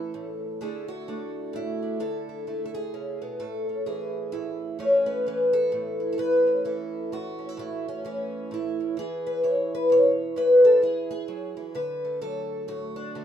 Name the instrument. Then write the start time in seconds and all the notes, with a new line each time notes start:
twelve-string acoustic guitar
Already playing: A2 E3 C#4 E4 A4
0.14 A2
0.61 D3 A3 D4 E4 G#4
0.88 F#4
1.08 A3 D4
1.53 A2 E4
1.82 D4
2.00 D3 A4
2.29 E4
2.47 A3 E4
2.66 A4
2.75 G#4
2.94 C#3
3.22 B2
3.40 A2 A4
3.69 C#4
3.86 E3 G#4
4.32 A2 E4
4.79 A2 C#4
5.06 B3
5.26 E3 B3
5.53 A4
5.72 A2
6.00 E4
6.13 A4
6.18 A2 B4
6.47 C#4
6.65 E3 A4
7.12 A2 F#4
7.39 C#4
7.49 E4
7.57 A2 E4
7.88 C#4
8.05 E3 C#4
8.51 A2 E4
8.80 C#4
8.97 E3 G#4
9.27 B4
9.43 E4 C#5
9.75 B4
9.90 B2 C#5
10.36 E3 B4
10.65 A4
10.82 E4 G#4
11.11 G#4
11.28 F#3
11.57 E3
11.75 D3 B4
12.05 A3
12.22 F#3 A4
12.68 A2 F#4
12.96 D4
13.15 D3 A3